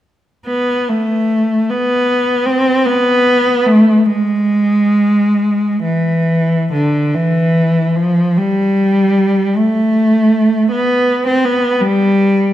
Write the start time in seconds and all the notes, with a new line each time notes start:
0.47 B3
0.89 A3
1.70 B3
2.46 C4
2.86 B3
3.66 A3
4.06 G#3
5.83 E3
6.72 D3
7.15 E3
7.96 F3
8.37 G3
9.56 A3
10.71 B3
11.27 C4
11.44 B3
11.81 G3